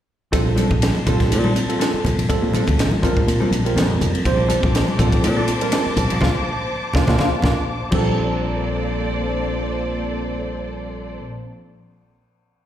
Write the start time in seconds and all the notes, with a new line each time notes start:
0.32 A#1 F3 G3 C4 D4 F4 A4, kick, hi-hat pedal, ride
0.46 muted clean electric guitar stroke
0.56 F3 C4 D4 A4, hi-hat pedal, ride, high conga
0.70 A#1, muted clean electric guitar stroke, kick, high conga
0.82 snare, hi-hat pedal, ride
0.95 muted clean electric guitar stroke, high conga
1.06 A#1 F3 G3 C4 D4 F4 A4, kick, hi-hat pedal, ride, low conga
1.19 muted clean electric guitar stroke, kick, snare, ride
1.30 A#2, muted clean electric guitar stroke, hi-hat pedal, ride
1.44 F3 C4 D4 A4, high conga
1.55 muted clean electric guitar stroke, hi-hat pedal, ride
1.69 G3 C4 F4 A4, ride
1.79 F3 C4 D4 A4, snare, hi-hat pedal, ride
1.94 muted clean electric guitar stroke, muted fingered electric bass stroke
2.04 A#1, muted clean electric guitar stroke, hi-hat pedal, ride, high conga, low conga
2.17 A#1, ride
2.29 G3 C4 F4 A4, kick, hi-hat pedal, ride
2.42 A#2, muted clean electric guitar stroke
2.53 F3 C4 D4 A4, hi-hat pedal, ride, high conga
2.67 D2, muted clean electric guitar stroke, kick, ride, high conga
2.78 A1, snare, hi-hat pedal, ride
2.91 muted clean electric guitar stroke, high conga
3.02 F3 G3 C4 D4 F4 A4 A#4, kick, hi-hat pedal, ride, low conga
3.16 muted clean electric guitar stroke, kick
3.27 A#2, muted clean electric guitar stroke, hi-hat pedal, ride
3.40 F3 C4 D4 A4, high conga
3.51 A#1, muted clean electric guitar stroke, hi-hat pedal, ride
3.65 G3 C4 F4 A#4, ride
3.76 F2 F3 C4 D4 A4, snare, hi-hat pedal, ride
3.89 muted clean electric guitar stroke
4.00 F2, muted clean electric guitar stroke, hi-hat pedal, ride, high conga, low conga
4.15 muted fingered electric bass stroke, ride
4.25 A#1 G3 C4 F4 C5 A5 D6, kick, hi-hat pedal, ride
4.37 muted clean electric guitar stroke
4.48 F3 C4 D4 A4, hi-hat pedal, ride, high conga
4.62 A#1, muted clean electric guitar stroke, kick, high conga
4.75 snare, hi-hat pedal, ride
4.87 muted clean electric guitar stroke, high conga
4.98 A#1 F3 G3 C4 D4 F4 A4, kick, hi-hat pedal, ride, low conga
5.11 muted clean electric guitar stroke, kick, ride
5.23 A#2, muted clean electric guitar stroke, hi-hat pedal, ride
5.37 F3 C4 D4 A4
5.48 muted clean electric guitar stroke, hi-hat pedal, ride
5.61 G3 C4 F4 A#4, ride
5.72 F3 C4 D4 A4, snare, hi-hat pedal, ride
5.86 muted clean electric guitar stroke, muted fingered electric bass stroke
5.96 A#1, muted clean electric guitar stroke, hi-hat pedal, ride, high conga, low conga
6.10 A#1, ride
6.21 A#1 A#3 D4 F4, kick, snare, low conga
6.93 A#1 A#3 D4 F4, kick, snare, low conga
7.07 A#1 A#3 D4 F4, kick, snare, low conga
7.18 A#1 A#3 D4 F4, kick, snare, low conga
7.42 A#1 A#3 D4 F4, kick, snare, low conga
7.91 A#1 F3 G3 C4 F4, kick, crash, high conga
7.95 A#3 D4 A4 C5 D5